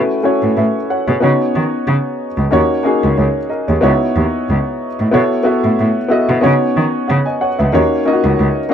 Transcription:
0.00 0.17 A3 medium
0.00 0.17 C#4 medium
0.00 0.17 E4 medium
0.00 0.18 F#4 medium
0.00 0.18 B4 medium
0.23 0.77 A3 medium
0.23 0.77 C#4 medium
0.23 0.77 E4 medium
0.23 0.77 F#4 medium
0.23 0.57 C#5 medium
0.43 0.51 A2 medium
0.57 0.65 A2 medium
0.57 0.87 B4 soft
0.57 0.87 E5 medium
0.90 1.06 C#5 medium
0.90 1.06 F#5 medium
1.07 1.16 B2 medium
1.07 1.38 G#4 soft
1.07 1.22 C#5 medium
1.20 1.31 C#3 medium
1.20 2.26 B3 medium
1.20 2.27 C#4 medium
1.20 2.26 D#4 medium
1.20 2.27 F#4 medium
1.20 2.27 C#5 medium
1.55 1.64 D#3 medium
1.88 1.96 C#3 medium
2.38 2.46 C#2 medium
2.51 2.61 D#2 loud
2.51 2.78 A#3 medium
2.51 2.78 C#4 medium
2.51 2.78 D#4 medium
2.51 2.78 F#4 medium
2.51 2.79 C#5 loud
2.83 3.37 A#3 medium
2.83 3.37 C#4 medium
2.83 3.38 D#4 medium
2.83 3.38 F#4 medium
2.83 3.16 G#4 medium
3.04 3.12 C#2 medium
3.17 3.27 C#2 medium
3.17 3.48 G#4 soft
3.17 3.48 C#5 medium
3.49 3.66 A#4 medium
3.49 3.66 D#5 medium
3.68 3.77 D#2 medium
3.68 3.99 G#4 soft
3.68 3.82 C#5 medium
3.81 3.91 C#2 loud
3.81 4.87 B3 medium
3.81 4.87 D#4 medium
3.81 4.87 E4 medium
3.81 4.87 F#4 medium
3.81 4.88 C#5 loud
4.16 4.24 D#2 medium
4.49 4.57 C#2 medium
5.00 5.08 A2 medium
5.11 5.22 B2 medium
5.11 5.38 B3 medium
5.11 5.39 E4 medium
5.11 5.39 F#4 medium
5.11 5.39 A4 medium
5.11 5.40 C#5 medium
5.43 5.98 B3 medium
5.43 5.98 E4 medium
5.43 5.98 F#4 medium
5.43 5.98 A4 medium
5.43 5.99 E5 medium
5.64 5.72 A2 medium
5.79 5.88 A2 medium
6.08 6.40 B3 medium
6.08 6.42 E4 medium
6.08 6.42 F#4 medium
6.08 6.43 A4 medium
6.08 6.43 D#5 medium
6.29 6.37 B2 medium
6.41 6.52 C#3 loud
6.41 7.47 B3 medium
6.41 7.48 C#4 medium
6.41 7.47 D#4 medium
6.41 7.48 F#4 medium
6.41 6.75 C#5 loud
6.77 6.85 D#3 medium
7.08 7.18 C#3 medium
7.08 7.25 C#5 soft
7.08 7.25 F#5 medium
7.26 7.40 D#5 medium
7.26 7.39 G#5 medium
7.41 7.58 C#5 medium
7.41 7.58 F#5 medium
7.59 7.68 C#2 medium
7.59 7.90 B4 soft
7.59 7.89 E5 medium
7.72 7.82 D#2 medium
7.72 7.99 A#3 medium
7.72 8.00 C#4 medium
7.72 8.00 D#4 medium
7.72 8.00 F#4 medium
7.72 8.01 C#5 medium
8.05 8.59 A#3 medium
8.05 8.59 C#4 medium
8.05 8.59 D#4 medium
8.05 8.13 F4 medium
8.05 8.60 D#5 medium
8.13 8.63 F#4 medium
8.24 8.32 C#2 medium
8.40 8.48 C#2 medium
8.69 8.74 A#3 medium
8.69 8.74 C#4 medium
8.69 8.74 D#4 medium
8.69 8.74 F#4 medium

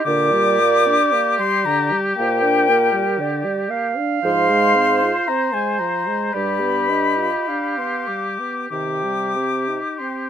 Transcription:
0.04 0.97 A#2 loud
0.04 0.33 D3 medium
0.04 3.92 G4 loud
0.04 1.89 D5 loud
0.04 1.38 D6 loud
0.32 0.61 G3 medium
0.60 0.88 A#3 medium
0.87 1.13 D4 medium
1.12 1.40 A#3 medium
1.39 1.67 G3 medium
1.39 1.67 C6 loud
1.65 1.93 D3 medium
1.65 2.00 A#5 loud
1.92 2.16 G3 medium
2.16 3.04 A#2 loud
2.16 2.44 A#3 medium
2.16 2.72 C5 medium
2.16 3.66 G5 loud
2.42 2.70 D4 medium
2.69 2.94 A#3 medium
2.69 3.22 A#4 medium
2.93 3.20 G3 medium
3.19 3.46 D3 medium
3.19 3.72 D5 medium
3.44 3.70 G3 medium
3.69 3.98 A#3 medium
3.69 5.30 F5 loud
3.97 4.22 D4 medium
4.23 5.11 G#2 medium
4.23 4.51 F3 medium
4.23 6.35 C5 medium
4.23 5.29 C6 loud
4.49 4.77 G#3 medium
4.75 5.04 C4 medium
5.02 5.30 F4 medium
5.28 5.55 C4 medium
5.28 6.33 C5 medium
5.28 5.55 A#5 loud
5.54 5.81 G#3 medium
5.54 5.80 G#5 loud
5.79 6.08 F3 medium
5.79 6.35 A#5 medium
6.07 6.34 G#3 medium
6.33 7.29 G2 medium
6.33 6.63 G3 medium
6.33 8.70 G4 medium
6.33 6.91 D5 medium
6.33 7.77 B5 loud
6.61 6.90 B3 medium
6.89 7.19 D4 medium
6.89 7.50 D#5 medium
7.18 7.49 F4 medium
7.48 7.79 D4 medium
7.48 8.39 F5 medium
7.78 8.09 B3 medium
7.78 8.09 C6 medium
8.07 8.40 G3 soft
8.07 8.69 D6 medium
8.39 8.70 B3 medium
8.69 9.79 C3 medium
8.69 9.05 D#3 medium
8.69 10.30 G4 medium
8.69 9.83 G5 medium
8.69 10.00 D6 loud
9.04 9.38 G3 medium
9.36 9.69 C4 soft
9.68 10.01 D#4 soft
9.98 10.30 C4 soft
9.98 10.30 G5 medium
9.98 10.30 C6 medium

